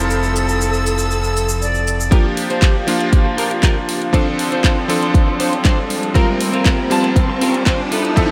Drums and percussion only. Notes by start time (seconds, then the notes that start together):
0.10 shaker
0.23 shaker
0.36 shaker
0.49 shaker
0.61 shaker
0.74 shaker
0.86 shaker
0.98 shaker
1.11 shaker
1.24 shaker
1.37 shaker
1.49 shaker
1.62 shaker
1.74 shaker
1.87 shaker
2.00 shaker
2.12 kick, closed hi-hat
2.37 open hi-hat
2.50 closed hi-hat
2.62 kick, clap, closed hi-hat
2.88 open hi-hat
3.01 closed hi-hat
3.13 kick, closed hi-hat
3.38 open hi-hat
3.51 closed hi-hat
3.63 kick, clap, closed hi-hat
3.89 open hi-hat
4.02 closed hi-hat
4.14 kick, closed hi-hat
4.39 open hi-hat
4.52 closed hi-hat
4.64 kick, clap, closed hi-hat
4.90 open hi-hat
5.02 closed hi-hat
5.14 kick, closed hi-hat
5.40 open hi-hat
5.53 closed hi-hat
5.65 kick, clap, closed hi-hat
5.90 open hi-hat
6.03 closed hi-hat
6.15 kick, closed hi-hat
6.41 open hi-hat
6.53 closed hi-hat
6.66 kick, clap, closed hi-hat
6.91 open hi-hat
7.04 closed hi-hat
7.16 kick, closed hi-hat
7.41 open hi-hat
7.54 closed hi-hat
7.66 kick, clap, closed hi-hat
7.92 open hi-hat
8.05 closed hi-hat
8.17 kick, closed hi-hat